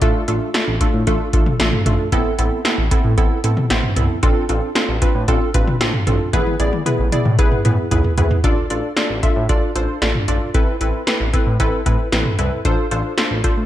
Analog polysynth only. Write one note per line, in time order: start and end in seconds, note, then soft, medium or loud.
0.02 0.24 A3 loud
0.02 0.24 D4 loud
0.02 0.24 F4 loud
0.02 0.24 A4 loud
0.28 0.50 A3 medium
0.28 0.50 D4 medium
0.28 0.50 F4 medium
0.28 0.50 A4 loud
0.54 0.76 A3 medium
0.54 0.76 D4 medium
0.54 0.76 F4 medium
0.54 0.76 A4 medium
0.81 1.02 A3 medium
0.81 1.02 D4 medium
0.81 1.02 F4 medium
0.81 1.02 A4 loud
1.07 1.29 A3 loud
1.07 1.29 D4 loud
1.07 1.29 F4 loud
1.07 1.29 A4 loud
1.33 1.55 A3 medium
1.33 1.55 D4 medium
1.33 1.55 F4 medium
1.33 1.55 A4 loud
1.60 1.81 A3 medium
1.60 1.81 D4 medium
1.60 1.81 F4 medium
1.60 1.81 A4 medium
1.86 2.08 A3 medium
1.86 2.08 D4 medium
1.86 2.08 F4 medium
1.86 2.08 A4 loud
2.12 2.34 B3 loud
2.12 2.34 C4 loud
2.12 2.34 E4 loud
2.12 2.34 A4 loud
2.39 2.60 B3 medium
2.39 2.60 C4 medium
2.39 2.60 E4 medium
2.39 2.60 A4 medium
2.65 2.87 B3 medium
2.65 2.87 C4 medium
2.65 2.87 E4 medium
2.65 2.87 A4 loud
2.91 3.13 B3 medium
2.91 3.13 C4 medium
2.91 3.13 E4 medium
2.91 3.13 A4 loud
3.18 3.39 B3 loud
3.18 3.39 C4 loud
3.18 3.39 E4 loud
3.18 3.39 A4 loud
3.44 3.66 B3 medium
3.44 3.66 C4 medium
3.44 3.66 E4 medium
3.44 3.66 A4 loud
3.70 3.92 B3 medium
3.70 3.92 C4 medium
3.70 3.92 E4 medium
3.70 3.92 C5 medium
3.97 4.18 B3 medium
3.97 4.18 C4 medium
3.97 4.18 E4 medium
3.97 4.18 A4 medium
4.23 4.45 C4 loud
4.23 4.45 D4 loud
4.23 4.45 F4 loud
4.23 4.45 A4 loud
4.49 4.71 C4 medium
4.49 4.71 D4 medium
4.49 4.71 F4 medium
4.49 4.71 A4 medium
4.75 4.97 C4 medium
4.75 4.97 D4 medium
4.75 4.97 F4 medium
4.75 4.97 A4 loud
5.02 5.24 C4 medium
5.02 5.24 D4 medium
5.02 5.24 F4 medium
5.02 5.24 B4 loud
5.28 5.50 C4 loud
5.28 5.50 D4 loud
5.28 5.50 F4 loud
5.28 5.50 A4 loud
5.54 5.76 C4 medium
5.54 5.76 D4 medium
5.54 5.76 F4 medium
5.54 5.76 B4 loud
5.81 6.02 C4 medium
5.81 6.02 D4 medium
5.81 6.02 F4 medium
5.81 6.02 A4 loud
6.07 6.29 C4 medium
6.07 6.29 D4 medium
6.07 6.29 F4 medium
6.07 6.29 A4 loud
6.33 6.55 B3 loud
6.33 6.55 E4 loud
6.33 6.55 G#4 loud
6.33 6.55 B4 loud
6.60 6.81 B3 medium
6.60 6.81 E4 medium
6.60 6.81 G#4 medium
6.60 6.81 D5 loud
6.86 7.08 B3 medium
6.86 7.08 E4 medium
6.86 7.08 G#4 medium
6.86 7.08 B4 loud
7.12 7.34 B3 medium
7.12 7.34 E4 medium
7.12 7.34 G#4 medium
7.12 7.34 D5 loud
7.39 7.60 B3 loud
7.39 7.60 E4 loud
7.39 7.60 G#4 loud
7.39 7.60 B4 loud
7.65 7.87 B3 medium
7.65 7.87 E4 medium
7.65 7.87 G#4 medium
7.65 7.87 B4 medium
7.91 8.13 B3 medium
7.91 8.13 E4 medium
7.91 8.13 G#4 medium
7.91 8.13 B4 loud
8.18 8.39 B3 medium
8.18 8.39 E4 medium
8.18 8.39 G#4 medium
8.18 8.39 B4 medium
8.44 8.66 D4 loud
8.44 8.66 F4 loud
8.44 8.66 A4 loud
8.44 8.66 D5 loud
8.70 8.92 D4 medium
8.70 8.92 F4 medium
8.70 8.92 A4 medium
8.70 8.92 D5 loud
8.97 9.18 D4 medium
8.97 9.18 F4 medium
8.97 9.18 A4 medium
8.97 9.18 D5 medium
9.23 9.45 D4 medium
9.23 9.45 F4 medium
9.23 9.45 A4 medium
9.23 9.45 E5 medium
9.49 9.71 D4 loud
9.49 9.71 F4 loud
9.49 9.71 A4 loud
9.49 9.71 D5 loud
9.76 9.97 D4 medium
9.76 9.97 F4 medium
9.76 9.97 A4 medium
9.76 9.97 C5 medium
10.02 10.24 D4 medium
10.02 10.24 F4 medium
10.02 10.24 A4 medium
10.02 10.24 D5 loud
10.28 10.50 D4 medium
10.28 10.50 F4 medium
10.28 10.50 A4 medium
10.28 10.50 D5 medium
10.54 10.76 C4 loud
10.54 10.76 E4 loud
10.54 10.76 A4 loud
10.54 10.76 B4 loud
10.81 11.03 C4 medium
10.81 11.03 E4 medium
10.81 11.03 A4 medium
10.81 11.03 B4 loud
11.07 11.29 C4 medium
11.07 11.29 E4 medium
11.07 11.29 A4 medium
11.07 11.29 B4 loud
11.33 11.55 C4 medium
11.33 11.55 E4 medium
11.33 11.55 A4 medium
11.33 11.55 B4 medium
11.60 11.81 C4 loud
11.60 11.81 E4 loud
11.60 11.81 A4 loud
11.60 11.81 B4 loud
11.86 12.08 C4 medium
11.86 12.08 E4 medium
11.86 12.08 A4 medium
11.86 12.08 B4 loud
12.12 12.34 C4 medium
12.12 12.34 E4 medium
12.12 12.34 A4 medium
12.12 12.34 B4 loud
12.39 12.60 C4 medium
12.39 12.60 E4 medium
12.39 12.60 A4 medium
12.39 12.60 B4 medium
12.65 12.87 D4 loud
12.65 12.87 F4 loud
12.65 12.87 A4 loud
12.65 12.87 C5 loud
12.91 13.13 D4 medium
12.91 13.13 F4 medium
12.91 13.13 A4 medium
12.91 13.13 C5 loud
13.18 13.39 D4 medium
13.18 13.39 F4 medium
13.18 13.39 A4 medium
13.18 13.39 C5 medium
13.44 13.66 D4 medium
13.44 13.66 F4 medium
13.44 13.66 A4 medium
13.44 13.66 C5 loud